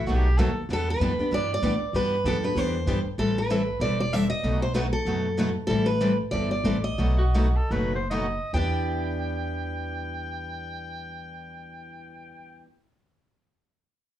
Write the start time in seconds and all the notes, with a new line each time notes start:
Already playing: F#5
0.06 B1 B2 D#3 F#3 A3 B3 D#4 F#4 A4
0.15 G4
0.37 D#2 B2 D#3 F#3 A3 B3 D#4 F#4 A4
0.69 E2 E3 G3 B3 D4 E4 G4 B4
0.73 A4
0.90 B4
1.00 F#2 E3 G3 B3 D4 E4 G4 B4
1.18 B3 D4 G4, muted upright bass stroke
1.31 G2 E3 G3 B3 D4 E4 G4 B4 D5
1.54 D5
1.62 A2 E3 G3 B3 D4 E4 G4 B4
1.81 muted upright bass stroke
1.93 G2 E3 G3 B3 D4 E4 G4 B4
2.24 F#2 E3 G3 B3 D4 E4 G4 A4 B4
2.43 B3 D4 G4 B4
2.55 E2 E3 G3 B3 D4 E4 G4 B4 C5
2.87 G2 E3 G3 B3 D4 E4 G4 B4
3.05 muted upright bass stroke
3.18 A1 E3 G3 C4 E4 A4
3.38 B4
3.50 E3 G3 C4 E4 A4
3.80 E1 E3 G3 C4 E4 A4 D5
4.00 D5
4.12 E3 G3 C4 E4 A4 E5
4.30 D#5
4.43 B1 B2 F#3 A3 D#4 F#4 B4
4.62 C5
4.74 B2 F#3 A3 D#4 F#4 B4
4.93 A4
5.05 F#2 B2 F#3 A3 D#4 F#4 B4
5.37 B2 F#3 A3 D#4 F#4 B4
5.67 A1 E3 G3 C4 E4 A4
5.86 B4
6.00 E3 G3 C4 E4 A4
6.31 G1 E3 G3 C4 E4 A4 D5
6.51 D5
6.63 A1 E3 G3 C4 E4 A4
6.84 D#5
6.98 B1 B2 F#3 A3 D#4 F#4 B4
7.18 F#4
7.34 B2 F#3 A3 D#4 F#4 B4
7.56 A4
7.71 F#1 B2 F#3 A3 D#4 F#4 B4
7.95 C5
8.10 B2 F#3 A3 D#4 F#4 B4 D#5
8.53 E2 E3 G3 B3 D4 E4 G4 B4 G5